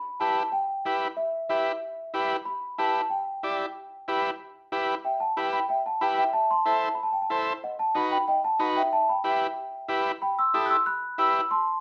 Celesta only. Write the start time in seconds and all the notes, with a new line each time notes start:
Already playing: B5
0.20 A5
0.52 G5
1.17 E5
1.49 E5
2.45 B5
2.78 A5
3.10 G5
5.05 E5 G5
5.20 F#5 A5
5.37 G5 B5
5.53 G5 B5
5.69 E5 G5
5.86 F#5 A5
6.01 G5 B5
6.18 E5 G5
6.33 E5 A5
6.51 A5 C6
6.66 E5 A5
6.95 B5
7.03 A5
7.12 G5
7.22 A5
7.64 D#5 F#5
7.79 F#5 A5
7.96 F#5 B5
8.12 G5 B5
8.28 D#5 G5
8.44 F#5 A5
8.60 F#5 B5
8.77 E5 G5
8.93 E5 A5
9.09 G5 B5
9.26 E5 G5
10.22 G5 B5
10.39 C6 E6
10.54 B5 D#6
10.66 F#6
10.70 C6 E6
10.86 B5 F#6
11.19 B5 E6
11.51 A5 C6